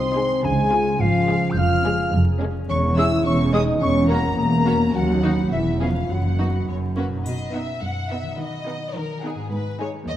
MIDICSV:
0, 0, Header, 1, 11, 480
1, 0, Start_track
1, 0, Key_signature, 5, "major"
1, 0, Tempo, 562852
1, 374, Time_signature, 2, 2, 24, 8
1, 3729, Tempo, 576369
1, 6609, Tempo, 562324
1, 8604, End_track
2, 0, Start_track
2, 0, Title_t, "Flute"
2, 0, Program_c, 0, 73
2, 0, Note_on_c, 0, 84, 78
2, 375, Note_on_c, 0, 80, 78
2, 388, Note_off_c, 0, 84, 0
2, 853, Note_on_c, 0, 77, 74
2, 866, Note_off_c, 0, 80, 0
2, 1283, Note_on_c, 0, 91, 57
2, 1296, Note_off_c, 0, 77, 0
2, 1340, Note_on_c, 0, 89, 85
2, 1353, Note_off_c, 0, 91, 0
2, 1819, Note_off_c, 0, 89, 0
2, 2298, Note_on_c, 0, 85, 91
2, 2518, Note_off_c, 0, 85, 0
2, 2541, Note_on_c, 0, 88, 80
2, 2594, Note_off_c, 0, 88, 0
2, 2780, Note_on_c, 0, 85, 84
2, 2833, Note_off_c, 0, 85, 0
2, 3014, Note_on_c, 0, 87, 74
2, 3067, Note_off_c, 0, 87, 0
2, 3258, Note_on_c, 0, 85, 92
2, 3311, Note_off_c, 0, 85, 0
2, 3492, Note_on_c, 0, 82, 77
2, 3725, Note_off_c, 0, 82, 0
2, 3730, Note_on_c, 0, 82, 77
2, 4195, Note_off_c, 0, 82, 0
2, 4204, Note_on_c, 0, 78, 78
2, 4669, Note_off_c, 0, 78, 0
2, 4678, Note_on_c, 0, 76, 62
2, 4731, Note_off_c, 0, 76, 0
2, 4921, Note_on_c, 0, 77, 48
2, 4975, Note_off_c, 0, 77, 0
2, 5161, Note_on_c, 0, 78, 52
2, 5637, Note_off_c, 0, 78, 0
2, 8604, End_track
3, 0, Start_track
3, 0, Title_t, "Violin section"
3, 0, Program_c, 1, 48
3, 0, Note_on_c, 1, 84, 71
3, 374, Note_on_c, 1, 80, 60
3, 375, Note_off_c, 1, 84, 0
3, 847, Note_off_c, 1, 80, 0
3, 859, Note_on_c, 1, 77, 67
3, 1330, Note_off_c, 1, 77, 0
3, 1346, Note_on_c, 1, 89, 67
3, 1812, Note_off_c, 1, 89, 0
3, 2298, Note_on_c, 1, 85, 67
3, 2366, Note_off_c, 1, 85, 0
3, 2536, Note_on_c, 1, 88, 76
3, 2769, Note_off_c, 1, 88, 0
3, 2780, Note_on_c, 1, 85, 71
3, 3010, Note_off_c, 1, 85, 0
3, 3018, Note_on_c, 1, 87, 76
3, 3086, Note_off_c, 1, 87, 0
3, 3262, Note_on_c, 1, 85, 71
3, 3490, Note_off_c, 1, 85, 0
3, 3496, Note_on_c, 1, 82, 65
3, 3725, Note_off_c, 1, 82, 0
3, 3735, Note_on_c, 1, 82, 72
3, 4198, Note_off_c, 1, 82, 0
3, 4208, Note_on_c, 1, 78, 60
3, 4680, Note_off_c, 1, 78, 0
3, 4684, Note_on_c, 1, 76, 50
3, 4915, Note_off_c, 1, 76, 0
3, 4922, Note_on_c, 1, 77, 48
3, 5156, Note_off_c, 1, 77, 0
3, 5164, Note_on_c, 1, 78, 42
3, 5649, Note_off_c, 1, 78, 0
3, 5650, Note_on_c, 1, 73, 58
3, 5717, Note_off_c, 1, 73, 0
3, 5898, Note_on_c, 1, 71, 43
3, 5965, Note_off_c, 1, 71, 0
3, 6130, Note_on_c, 1, 75, 51
3, 6364, Note_off_c, 1, 75, 0
3, 6374, Note_on_c, 1, 76, 55
3, 6610, Note_off_c, 1, 76, 0
3, 6610, Note_on_c, 1, 78, 62
3, 6850, Note_on_c, 1, 76, 56
3, 6851, Note_off_c, 1, 78, 0
3, 7091, Note_off_c, 1, 76, 0
3, 7091, Note_on_c, 1, 75, 58
3, 7561, Note_off_c, 1, 75, 0
3, 7568, Note_on_c, 1, 70, 62
3, 7809, Note_off_c, 1, 70, 0
3, 7814, Note_on_c, 1, 68, 50
3, 8052, Note_off_c, 1, 68, 0
3, 8052, Note_on_c, 1, 71, 55
3, 8286, Note_off_c, 1, 71, 0
3, 8293, Note_on_c, 1, 73, 64
3, 8362, Note_off_c, 1, 73, 0
3, 8535, Note_on_c, 1, 75, 77
3, 8581, Note_off_c, 1, 75, 0
3, 8604, End_track
4, 0, Start_track
4, 0, Title_t, "Vibraphone"
4, 0, Program_c, 2, 11
4, 0, Note_on_c, 2, 72, 59
4, 336, Note_off_c, 2, 72, 0
4, 372, Note_on_c, 2, 68, 60
4, 822, Note_off_c, 2, 68, 0
4, 863, Note_on_c, 2, 65, 60
4, 1308, Note_off_c, 2, 65, 0
4, 1343, Note_on_c, 2, 77, 66
4, 1787, Note_off_c, 2, 77, 0
4, 2299, Note_on_c, 2, 73, 73
4, 2519, Note_off_c, 2, 73, 0
4, 2532, Note_on_c, 2, 76, 70
4, 2755, Note_off_c, 2, 76, 0
4, 2767, Note_on_c, 2, 73, 72
4, 2992, Note_off_c, 2, 73, 0
4, 3006, Note_on_c, 2, 75, 76
4, 3230, Note_off_c, 2, 75, 0
4, 3247, Note_on_c, 2, 73, 71
4, 3470, Note_off_c, 2, 73, 0
4, 3488, Note_on_c, 2, 70, 65
4, 3711, Note_off_c, 2, 70, 0
4, 3730, Note_on_c, 2, 70, 66
4, 4171, Note_off_c, 2, 70, 0
4, 4204, Note_on_c, 2, 66, 62
4, 4645, Note_off_c, 2, 66, 0
4, 4687, Note_on_c, 2, 64, 50
4, 4905, Note_off_c, 2, 64, 0
4, 4921, Note_on_c, 2, 65, 48
4, 5144, Note_off_c, 2, 65, 0
4, 5161, Note_on_c, 2, 66, 38
4, 5614, Note_off_c, 2, 66, 0
4, 8604, End_track
5, 0, Start_track
5, 0, Title_t, "Violin section"
5, 0, Program_c, 3, 48
5, 139, Note_on_c, 3, 68, 54
5, 316, Note_off_c, 3, 68, 0
5, 619, Note_on_c, 3, 68, 57
5, 797, Note_off_c, 3, 68, 0
5, 1100, Note_on_c, 3, 68, 59
5, 1278, Note_off_c, 3, 68, 0
5, 1580, Note_on_c, 3, 68, 60
5, 1757, Note_off_c, 3, 68, 0
5, 2063, Note_on_c, 3, 68, 59
5, 2238, Note_off_c, 3, 68, 0
5, 2543, Note_on_c, 3, 68, 50
5, 2611, Note_off_c, 3, 68, 0
5, 3018, Note_on_c, 3, 68, 47
5, 3087, Note_off_c, 3, 68, 0
5, 3494, Note_on_c, 3, 66, 49
5, 3562, Note_off_c, 3, 66, 0
5, 3965, Note_on_c, 3, 66, 50
5, 4032, Note_off_c, 3, 66, 0
5, 4441, Note_on_c, 3, 66, 48
5, 4507, Note_off_c, 3, 66, 0
5, 4915, Note_on_c, 3, 68, 35
5, 4982, Note_off_c, 3, 68, 0
5, 5406, Note_on_c, 3, 66, 37
5, 5473, Note_off_c, 3, 66, 0
5, 5890, Note_on_c, 3, 66, 34
5, 5957, Note_off_c, 3, 66, 0
5, 6368, Note_on_c, 3, 78, 42
5, 6546, Note_off_c, 3, 78, 0
5, 6849, Note_on_c, 3, 78, 43
5, 7029, Note_off_c, 3, 78, 0
5, 7332, Note_on_c, 3, 78, 43
5, 7510, Note_off_c, 3, 78, 0
5, 7807, Note_on_c, 3, 78, 44
5, 7987, Note_off_c, 3, 78, 0
5, 8290, Note_on_c, 3, 80, 47
5, 8467, Note_off_c, 3, 80, 0
5, 8604, End_track
6, 0, Start_track
6, 0, Title_t, "Harp"
6, 0, Program_c, 4, 46
6, 0, Note_on_c, 4, 48, 50
6, 0, Note_on_c, 4, 60, 40
6, 0, Note_on_c, 4, 65, 33
6, 0, Note_on_c, 4, 68, 31
6, 51, Note_on_c, 4, 63, 47
6, 166, Note_off_c, 4, 65, 0
6, 212, Note_on_c, 4, 56, 44
6, 374, Note_on_c, 4, 49, 53
6, 392, Note_off_c, 4, 48, 0
6, 392, Note_off_c, 4, 60, 0
6, 393, Note_off_c, 4, 63, 0
6, 534, Note_on_c, 4, 61, 39
6, 700, Note_on_c, 4, 65, 42
6, 861, Note_on_c, 4, 67, 36
6, 1009, Note_off_c, 4, 65, 0
6, 1019, Note_on_c, 4, 65, 46
6, 1132, Note_off_c, 4, 67, 0
6, 1173, Note_off_c, 4, 56, 0
6, 1183, Note_on_c, 4, 56, 42
6, 1243, Note_off_c, 4, 68, 0
6, 1340, Note_on_c, 4, 53, 59
6, 1358, Note_off_c, 4, 49, 0
6, 1490, Note_off_c, 4, 56, 0
6, 1500, Note_on_c, 4, 56, 44
6, 1658, Note_on_c, 4, 68, 46
6, 1818, Note_on_c, 4, 70, 40
6, 1969, Note_off_c, 4, 68, 0
6, 1979, Note_on_c, 4, 68, 47
6, 2090, Note_off_c, 4, 70, 0
6, 2130, Note_off_c, 4, 61, 0
6, 2140, Note_on_c, 4, 61, 48
6, 2298, Note_on_c, 4, 52, 60
6, 2316, Note_off_c, 4, 65, 0
6, 2317, Note_off_c, 4, 53, 0
6, 2449, Note_off_c, 4, 56, 0
6, 2459, Note_on_c, 4, 56, 40
6, 2609, Note_off_c, 4, 68, 0
6, 2620, Note_on_c, 4, 68, 50
6, 2777, Note_on_c, 4, 70, 39
6, 2923, Note_off_c, 4, 68, 0
6, 2934, Note_on_c, 4, 68, 47
6, 3045, Note_off_c, 4, 70, 0
6, 3082, Note_off_c, 4, 61, 0
6, 3092, Note_on_c, 4, 61, 48
6, 3241, Note_off_c, 4, 52, 0
6, 3251, Note_on_c, 4, 52, 62
6, 3270, Note_off_c, 4, 68, 0
6, 3271, Note_off_c, 4, 56, 0
6, 3412, Note_on_c, 4, 54, 44
6, 3573, Note_on_c, 4, 73, 46
6, 3733, Note_on_c, 4, 75, 36
6, 3878, Note_off_c, 4, 73, 0
6, 3888, Note_on_c, 4, 73, 47
6, 3999, Note_off_c, 4, 75, 0
6, 4037, Note_off_c, 4, 61, 0
6, 4047, Note_on_c, 4, 61, 45
6, 4207, Note_on_c, 4, 51, 53
6, 4223, Note_off_c, 4, 52, 0
6, 4223, Note_off_c, 4, 61, 0
6, 4224, Note_off_c, 4, 73, 0
6, 4362, Note_on_c, 4, 63, 39
6, 4511, Note_off_c, 4, 63, 0
6, 4521, Note_on_c, 4, 63, 37
6, 4525, Note_on_c, 4, 71, 39
6, 4677, Note_on_c, 4, 52, 42
6, 4698, Note_off_c, 4, 63, 0
6, 4699, Note_off_c, 4, 51, 0
6, 4699, Note_off_c, 4, 54, 0
6, 4837, Note_on_c, 4, 61, 36
6, 4988, Note_off_c, 4, 61, 0
6, 4994, Note_off_c, 4, 71, 0
6, 4998, Note_on_c, 4, 61, 33
6, 5004, Note_on_c, 4, 71, 37
6, 5161, Note_on_c, 4, 42, 38
6, 5178, Note_off_c, 4, 52, 0
6, 5179, Note_off_c, 4, 61, 0
6, 5321, Note_on_c, 4, 54, 28
6, 5480, Note_off_c, 4, 71, 0
6, 5485, Note_on_c, 4, 63, 30
6, 5493, Note_on_c, 4, 71, 34
6, 5642, Note_off_c, 4, 42, 0
6, 5652, Note_on_c, 4, 42, 37
6, 5668, Note_off_c, 4, 63, 0
6, 5669, Note_off_c, 4, 71, 0
6, 5801, Note_off_c, 4, 54, 0
6, 5811, Note_on_c, 4, 54, 32
6, 5972, Note_on_c, 4, 61, 28
6, 5979, Note_on_c, 4, 70, 33
6, 5984, Note_on_c, 4, 47, 36
6, 6011, Note_off_c, 4, 54, 0
6, 6021, Note_on_c, 4, 54, 30
6, 6058, Note_on_c, 4, 63, 31
6, 6095, Note_on_c, 4, 71, 33
6, 6151, Note_off_c, 4, 61, 0
6, 6152, Note_off_c, 4, 42, 0
6, 6152, Note_off_c, 4, 70, 0
6, 6941, Note_on_c, 4, 51, 38
6, 6970, Note_off_c, 4, 54, 0
6, 6981, Note_on_c, 4, 54, 32
6, 7008, Note_off_c, 4, 63, 0
6, 7018, Note_on_c, 4, 63, 30
6, 7036, Note_off_c, 4, 47, 0
6, 7046, Note_off_c, 4, 71, 0
6, 7057, Note_on_c, 4, 71, 30
6, 7900, Note_on_c, 4, 44, 41
6, 7939, Note_on_c, 4, 56, 35
6, 7967, Note_off_c, 4, 63, 0
6, 7977, Note_on_c, 4, 63, 35
6, 7994, Note_off_c, 4, 51, 0
6, 8014, Note_off_c, 4, 54, 0
6, 8016, Note_on_c, 4, 68, 36
6, 8604, Note_off_c, 4, 44, 0
6, 8604, Note_off_c, 4, 56, 0
6, 8604, Note_off_c, 4, 63, 0
6, 8604, Note_off_c, 4, 68, 0
6, 8604, Note_off_c, 4, 71, 0
6, 8604, End_track
7, 0, Start_track
7, 0, Title_t, "Viola section"
7, 0, Program_c, 5, 48
7, 127, Note_on_c, 5, 56, 51
7, 127, Note_on_c, 5, 63, 52
7, 309, Note_off_c, 5, 56, 0
7, 309, Note_off_c, 5, 63, 0
7, 613, Note_on_c, 5, 56, 50
7, 613, Note_on_c, 5, 65, 51
7, 793, Note_off_c, 5, 56, 0
7, 793, Note_off_c, 5, 65, 0
7, 1093, Note_on_c, 5, 56, 52
7, 1095, Note_on_c, 5, 65, 52
7, 1274, Note_off_c, 5, 56, 0
7, 1275, Note_off_c, 5, 65, 0
7, 1574, Note_on_c, 5, 56, 63
7, 1575, Note_on_c, 5, 61, 55
7, 1754, Note_off_c, 5, 56, 0
7, 1755, Note_off_c, 5, 61, 0
7, 2052, Note_on_c, 5, 61, 58
7, 2054, Note_on_c, 5, 56, 59
7, 2233, Note_off_c, 5, 56, 0
7, 2233, Note_off_c, 5, 61, 0
7, 2529, Note_on_c, 5, 56, 57
7, 2530, Note_on_c, 5, 61, 50
7, 2597, Note_off_c, 5, 56, 0
7, 2598, Note_off_c, 5, 61, 0
7, 3000, Note_on_c, 5, 56, 49
7, 3004, Note_on_c, 5, 61, 51
7, 3068, Note_off_c, 5, 56, 0
7, 3072, Note_off_c, 5, 61, 0
7, 3483, Note_on_c, 5, 61, 50
7, 3485, Note_on_c, 5, 58, 49
7, 3551, Note_off_c, 5, 61, 0
7, 3553, Note_off_c, 5, 58, 0
7, 3960, Note_on_c, 5, 58, 47
7, 3962, Note_on_c, 5, 61, 46
7, 4026, Note_off_c, 5, 58, 0
7, 4029, Note_off_c, 5, 61, 0
7, 4442, Note_on_c, 5, 63, 47
7, 4444, Note_on_c, 5, 59, 43
7, 4509, Note_off_c, 5, 63, 0
7, 4511, Note_off_c, 5, 59, 0
7, 4920, Note_on_c, 5, 61, 40
7, 4921, Note_on_c, 5, 59, 37
7, 4986, Note_off_c, 5, 61, 0
7, 4988, Note_off_c, 5, 59, 0
7, 5405, Note_on_c, 5, 63, 34
7, 5407, Note_on_c, 5, 59, 35
7, 5472, Note_off_c, 5, 63, 0
7, 5473, Note_off_c, 5, 59, 0
7, 5885, Note_on_c, 5, 61, 34
7, 5890, Note_on_c, 5, 58, 30
7, 5952, Note_off_c, 5, 61, 0
7, 5956, Note_off_c, 5, 58, 0
7, 6367, Note_on_c, 5, 59, 43
7, 6368, Note_on_c, 5, 63, 42
7, 6546, Note_off_c, 5, 59, 0
7, 6546, Note_off_c, 5, 63, 0
7, 6849, Note_on_c, 5, 59, 43
7, 6850, Note_on_c, 5, 63, 40
7, 7029, Note_off_c, 5, 59, 0
7, 7030, Note_off_c, 5, 63, 0
7, 7330, Note_on_c, 5, 59, 43
7, 7333, Note_on_c, 5, 63, 43
7, 7509, Note_off_c, 5, 59, 0
7, 7511, Note_off_c, 5, 63, 0
7, 7810, Note_on_c, 5, 59, 43
7, 7810, Note_on_c, 5, 63, 43
7, 7989, Note_off_c, 5, 59, 0
7, 7989, Note_off_c, 5, 63, 0
7, 8293, Note_on_c, 5, 56, 47
7, 8293, Note_on_c, 5, 63, 46
7, 8469, Note_off_c, 5, 56, 0
7, 8469, Note_off_c, 5, 63, 0
7, 8604, End_track
8, 0, Start_track
8, 0, Title_t, "French horn section"
8, 0, Program_c, 6, 60
8, 0, Note_on_c, 6, 60, 61
8, 360, Note_off_c, 6, 60, 0
8, 373, Note_on_c, 6, 56, 64
8, 850, Note_on_c, 6, 53, 59
8, 856, Note_off_c, 6, 56, 0
8, 1325, Note_off_c, 6, 53, 0
8, 1345, Note_on_c, 6, 65, 67
8, 1812, Note_off_c, 6, 65, 0
8, 2295, Note_on_c, 6, 61, 64
8, 2402, Note_off_c, 6, 61, 0
8, 2535, Note_on_c, 6, 64, 67
8, 2768, Note_off_c, 6, 64, 0
8, 2782, Note_on_c, 6, 61, 71
8, 3012, Note_on_c, 6, 63, 76
8, 3016, Note_off_c, 6, 61, 0
8, 3249, Note_on_c, 6, 61, 72
8, 3250, Note_off_c, 6, 63, 0
8, 3488, Note_off_c, 6, 61, 0
8, 3500, Note_on_c, 6, 58, 57
8, 3606, Note_off_c, 6, 58, 0
8, 3720, Note_on_c, 6, 58, 66
8, 4190, Note_off_c, 6, 58, 0
8, 4207, Note_on_c, 6, 54, 65
8, 4670, Note_off_c, 6, 54, 0
8, 4686, Note_on_c, 6, 52, 49
8, 4792, Note_off_c, 6, 52, 0
8, 4925, Note_on_c, 6, 53, 45
8, 5032, Note_off_c, 6, 53, 0
8, 5162, Note_on_c, 6, 54, 44
8, 5638, Note_off_c, 6, 54, 0
8, 8604, End_track
9, 0, Start_track
9, 0, Title_t, "Cello section"
9, 0, Program_c, 7, 48
9, 0, Note_on_c, 7, 48, 60
9, 270, Note_off_c, 7, 48, 0
9, 374, Note_on_c, 7, 49, 70
9, 755, Note_off_c, 7, 49, 0
9, 855, Note_on_c, 7, 44, 65
9, 1237, Note_off_c, 7, 44, 0
9, 1339, Note_on_c, 7, 41, 67
9, 1718, Note_off_c, 7, 41, 0
9, 1819, Note_on_c, 7, 41, 72
9, 2197, Note_off_c, 7, 41, 0
9, 2301, Note_on_c, 7, 40, 64
9, 2695, Note_off_c, 7, 40, 0
9, 2774, Note_on_c, 7, 40, 69
9, 3171, Note_off_c, 7, 40, 0
9, 3251, Note_on_c, 7, 40, 62
9, 3649, Note_off_c, 7, 40, 0
9, 3731, Note_on_c, 7, 40, 62
9, 4125, Note_off_c, 7, 40, 0
9, 4203, Note_on_c, 7, 39, 66
9, 4598, Note_off_c, 7, 39, 0
9, 4681, Note_on_c, 7, 40, 49
9, 5079, Note_off_c, 7, 40, 0
9, 5159, Note_on_c, 7, 42, 46
9, 5565, Note_off_c, 7, 42, 0
9, 5646, Note_on_c, 7, 42, 41
9, 6050, Note_off_c, 7, 42, 0
9, 6128, Note_on_c, 7, 47, 49
9, 6507, Note_off_c, 7, 47, 0
9, 6605, Note_on_c, 7, 42, 48
9, 6989, Note_off_c, 7, 42, 0
9, 7090, Note_on_c, 7, 51, 52
9, 7470, Note_off_c, 7, 51, 0
9, 7567, Note_on_c, 7, 51, 49
9, 7947, Note_off_c, 7, 51, 0
9, 8048, Note_on_c, 7, 44, 51
9, 8427, Note_off_c, 7, 44, 0
9, 8525, Note_on_c, 7, 39, 59
9, 8604, Note_off_c, 7, 39, 0
9, 8604, End_track
10, 0, Start_track
10, 0, Title_t, "Double bass section"
10, 0, Program_c, 8, 48
10, 0, Note_on_c, 8, 36, 54
10, 274, Note_off_c, 8, 36, 0
10, 381, Note_on_c, 8, 37, 56
10, 759, Note_off_c, 8, 37, 0
10, 857, Note_on_c, 8, 32, 64
10, 1238, Note_off_c, 8, 32, 0
10, 1342, Note_on_c, 8, 29, 67
10, 1719, Note_off_c, 8, 29, 0
10, 1821, Note_on_c, 8, 29, 66
10, 2198, Note_off_c, 8, 29, 0
10, 2302, Note_on_c, 8, 28, 65
10, 2695, Note_off_c, 8, 28, 0
10, 2776, Note_on_c, 8, 28, 62
10, 3172, Note_off_c, 8, 28, 0
10, 3254, Note_on_c, 8, 28, 62
10, 3650, Note_off_c, 8, 28, 0
10, 3728, Note_on_c, 8, 28, 53
10, 4124, Note_off_c, 8, 28, 0
10, 4204, Note_on_c, 8, 39, 58
10, 4599, Note_off_c, 8, 39, 0
10, 4685, Note_on_c, 8, 28, 50
10, 5082, Note_off_c, 8, 28, 0
10, 5168, Note_on_c, 8, 30, 47
10, 5569, Note_off_c, 8, 30, 0
10, 5653, Note_on_c, 8, 30, 39
10, 6053, Note_off_c, 8, 30, 0
10, 8604, End_track
11, 0, Start_track
11, 0, Title_t, "Drums"
11, 6132, Note_on_c, 9, 81, 27
11, 6215, Note_off_c, 9, 81, 0
11, 8604, End_track
0, 0, End_of_file